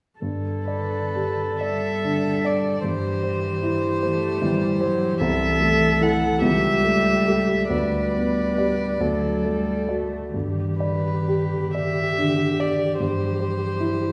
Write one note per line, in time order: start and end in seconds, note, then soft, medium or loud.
0.20 2.81 G2 soft
0.20 1.63 D3 soft
0.20 2.86 A4 soft
0.68 1.57 B4 soft
0.68 1.43 D5 soft
1.15 1.88 G4 soft
1.61 2.84 G3 soft
1.61 2.29 D5 soft
1.61 2.47 E5 medium
2.05 2.69 D3 soft
2.45 2.85 D5 soft
2.45 2.85 D5 medium
2.84 5.16 G2 soft
2.84 4.05 E3 soft
2.84 5.22 G4 soft
2.84 5.17 C5 medium
3.24 3.87 C5 soft
3.63 4.26 E4 soft
4.03 4.43 A3 medium
4.03 4.65 C5 soft
4.42 5.04 E3 soft
4.42 4.82 G3 medium
4.81 5.20 F#3 soft
4.81 5.20 C5 soft
5.20 6.39 C2 medium
5.20 6.45 E3 medium
5.20 6.42 A4 medium
5.20 6.04 E5 medium
5.60 6.26 A3 soft
6.01 6.38 E4 soft
6.01 6.39 A4 soft
6.01 6.42 F#5 medium
6.42 7.67 C#2 soft
6.42 7.72 G3 medium
6.42 7.69 G4 soft
6.42 7.69 E5 medium
6.84 7.54 A3 soft
7.27 7.67 G4 soft
7.27 7.67 A4 soft
7.70 8.96 D2 soft
7.70 8.99 G3 soft
7.70 9.03 B4 soft
7.70 9.84 D5 medium
8.14 8.84 B3 soft
8.58 8.97 G4 soft
8.58 8.97 D5 soft
9.00 10.30 D2 soft
9.00 9.46 F#3 soft
9.00 10.12 A4 soft
9.44 9.91 G3 soft
9.44 10.16 A3 soft
9.88 10.35 A3 soft
9.88 10.30 F#4 soft
9.88 10.30 D5 soft
10.34 12.96 G2 soft
10.34 12.97 D3 soft
10.34 14.12 G4 soft
10.80 11.71 B4 soft
10.80 11.56 D5 soft
11.28 12.01 G4 soft
11.74 12.43 D5 soft
11.74 12.62 E5 medium
12.18 12.84 D3 soft
12.60 13.00 D5 soft
12.60 13.00 D5 medium
13.00 14.12 G2 soft
13.00 14.12 E3 soft
13.00 14.12 C5 medium
13.40 14.04 C5 soft
13.80 14.12 E4 soft